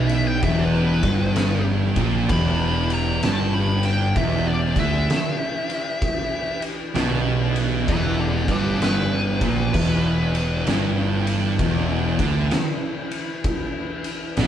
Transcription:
Already playing: B1 B2 E3 G4 B4
0.09 E5, ride
0.27 G5
0.43 E1 E2 E5, kick, ride
0.59 B4
0.75 B4
1.03 G1 G2, kick, ride
1.36 snare, ride
1.96 A#1 A#2, kick, ride
2.29 E1 E2 B5, kick, ride
2.90 A#5, ride
3.23 G1 G2 A5, snare, ride
3.54 B5
3.83 G5, ride
4.16 E1 E2 E5, kick, ride
4.48 D5
4.76 D2 D3, kick, ride
4.80 E5
5.10 snare, ride
5.70 ride
6.02 kick, ride
6.62 ride
6.95 B1 B2, snare, ride
7.56 ride
7.88 E1 E2 B4 E5, kick, ride
8.19 A4 D5
8.48 G1 G2 G4 B4, kick, ride
8.82 B4, snare, ride
9.41 A#1 A#2, kick, ride
9.74 E1 E2 E4, kick, crash
10.35 ride
10.67 G1 G2, snare, ride
11.27 ride
11.59 E1 E2, kick, ride
12.19 D2 D3, kick, ride
12.51 snare, ride
13.11 ride
13.44 kick, ride
14.04 ride
14.37 B1 B2, snare, ride

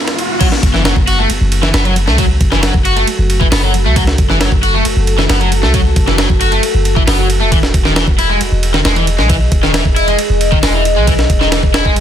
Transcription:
Already playing: E3 B3 D#4 G#4, riser
0.08 snare, ride
0.19 ride
0.41 F#3 F#4 A4, kick, crash, ride
0.52 snare
0.63 F#1, kick, ride
0.74 E3, snare
0.85 F#3, snare, ride
0.96 F#1, kick
1.07 F#4, ride
1.19 A3
1.30 F#1, ride
1.41 F#1
1.52 ride
1.63 E3, snare
1.74 F#1 B3, snare, ride
1.85 F#3, ride
1.96 ride
2.07 C#2 A3, snare
2.18 F#3, kick, ride
2.41 F#1, kick, ride
2.52 E3, snare
2.63 F#3, snare, ride
2.74 F#1, kick
2.85 F#4, ride
2.96 A3, ride
3.07 ride
3.19 F#1
3.30 ride
3.41 E3, kick
3.52 F#1 B3, snare, open hi-hat
3.63 F#3
3.74 ride
3.85 C#2 A3
3.96 F#3, kick, ride
4.07 snare
4.18 F#1, kick, ride
4.30 E3, snare
4.41 F#3, snare, ride
4.52 F#1, kick
4.63 F#4, ride
4.74 A3
4.85 F#1, ride
4.96 F#1
5.07 ride
5.19 E3, snare
5.29 F#1 B3, snare, ride
5.41 F#3, ride
5.52 ride
5.63 C#2 A3, snare
5.74 F#3, kick, ride
5.96 F#1, kick, ride
6.08 E3, snare
6.18 F#3, snare, ride
6.30 F#1, kick
6.41 F#4, ride
6.52 A3, ride
6.63 ride
6.74 F#1
6.85 ride
6.97 E3, kick
7.07 F#1 B3, snare, open hi-hat
7.19 F#3
7.30 ride
7.41 E1 A3
7.52 E3 G#4 D#5, kick, ride
7.63 snare
7.74 E1, kick, ride
7.85 D#3, snare
7.96 E3, snare, ride
8.08 E1, kick
8.19 E4, ride
8.30 G#3
8.41 E1, ride
8.52 E1
8.63 ride
8.74 D#3, snare
8.85 E1 G#3, snare, ride
8.96 E3, ride
9.07 ride
9.19 B1 G#3, snare
9.29 E3, kick, ride
9.52 E1, kick, ride
9.63 D#3, snare
9.74 E3, snare, ride
9.85 E1, kick
9.96 E4, ride
10.08 G#3, ride
10.19 ride
10.30 E1
10.41 ride
10.52 D#3, kick
10.63 E1 G#3, snare, open hi-hat
10.74 E3
10.85 ride
10.96 B1 G#3
11.07 E3, kick, ride
11.19 snare
11.30 E1, kick, ride
11.41 D#3, snare
11.52 E3, snare, ride
11.63 E1, kick
11.74 E4, snare, ride
11.85 G#3, kick
11.96 E1, ride

